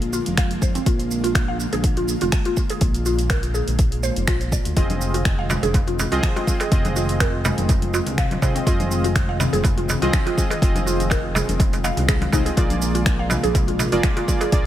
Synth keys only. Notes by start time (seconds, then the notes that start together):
4.77 C4 F4 G#4 D#5
6.12 C4 F4 G#4 D#5
6.47 C4 F4 G#4 D#5
6.72 C4 F4 G#4 D#5
8.42 C4 F4 G#4 D#5
8.67 C4 F4 G#4 D#5
10.02 C4 F4 G#4 D#5
10.38 C4 F4 G#4 D#5
10.62 C4 F4 G#4 D#5
12.33 C4 F4 G#4 D#5
12.57 A#3 F4 G#4 D5
13.92 A#3 F4 G#4 D5
14.28 A#3 F4 G#4 D5
14.53 A#3 F4 G#4 D5